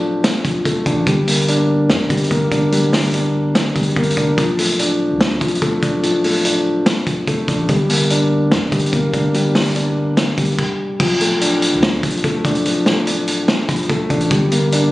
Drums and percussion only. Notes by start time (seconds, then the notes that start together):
0.24 snare, closed hi-hat
0.45 kick, closed hi-hat
0.65 kick, closed hi-hat
0.86 kick, closed hi-hat
1.07 kick, closed hi-hat
1.28 closed hi-hat, open hi-hat
1.34 closed hi-hat
1.41 closed hi-hat
1.48 closed hi-hat
1.90 snare
2.10 kick, closed hi-hat
2.17 closed hi-hat
2.24 closed hi-hat
2.31 kick, closed hi-hat
2.52 kick, closed hi-hat
2.72 closed hi-hat
2.93 snare, open hi-hat
3.14 closed hi-hat
3.55 snare, closed hi-hat
3.76 kick, closed hi-hat
3.83 closed hi-hat
3.90 closed hi-hat
3.96 kick, closed hi-hat
4.03 closed hi-hat
4.10 closed hi-hat
4.17 kick, closed hi-hat
4.38 kick, closed hi-hat
4.59 closed hi-hat, open hi-hat
4.66 closed hi-hat
4.72 closed hi-hat
4.79 closed hi-hat
5.21 snare
5.41 kick, closed hi-hat
5.48 closed hi-hat
5.55 closed hi-hat
5.62 kick, closed hi-hat
5.83 kick, closed hi-hat
6.03 closed hi-hat
6.24 open hi-hat
6.45 closed hi-hat
6.86 snare, closed hi-hat
7.07 kick, closed hi-hat
7.27 kick, closed hi-hat
7.48 kick, closed hi-hat
7.69 kick, closed hi-hat
7.90 closed hi-hat, open hi-hat
7.96 closed hi-hat
8.03 closed hi-hat
8.10 closed hi-hat
8.52 snare
8.72 kick, closed hi-hat
8.79 closed hi-hat
8.86 closed hi-hat
8.93 kick, closed hi-hat
9.14 kick, closed hi-hat
9.34 closed hi-hat
9.55 snare, open hi-hat
9.76 closed hi-hat
10.17 snare, closed hi-hat
10.38 kick, closed hi-hat
10.45 closed hi-hat
10.52 closed hi-hat
10.59 kick, crash
11.00 kick, crash
11.21 closed hi-hat
11.41 closed hi-hat
11.62 closed hi-hat
11.83 snare
12.03 kick, closed hi-hat
12.10 closed hi-hat
12.17 closed hi-hat
12.24 kick, closed hi-hat
12.45 kick, closed hi-hat
12.55 closed hi-hat
12.65 closed hi-hat
12.86 snare
13.07 closed hi-hat
13.28 closed hi-hat
13.48 snare
13.69 kick, cross-stick, closed hi-hat
13.76 closed hi-hat
13.83 closed hi-hat
13.89 kick, closed hi-hat
14.10 kick, closed hi-hat
14.21 closed hi-hat
14.31 kick, closed hi-hat
14.52 closed hi-hat
14.72 closed hi-hat